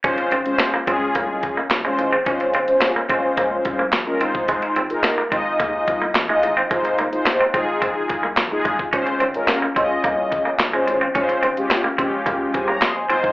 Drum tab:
HH |xxxxx-x-x-x-x-x-|xxxxx-x-x-x-x-x-|xxxxx-x-x-x-x-x-|xxxxx-x-x-x-x-x-|
CP |----x-------x---|----x-------x---|----x-------x---|----x-------x---|
SD |----o-------o---|----o-------o---|----o-------o---|----o-------o---|
BD |o-----o-o-o-----|o-----o-o-o----o|o-----o-o-o-----|o-----o-o-o---oo|

HH |xxxxx-x-x-x-x-x-|xxxxx-x-x-x-x-x-|
CP |----x-------x---|----x-------x---|
SD |----o-------o---|----o-------o---|
BD |o-----o-o-o-----|o-----o-o-o----o|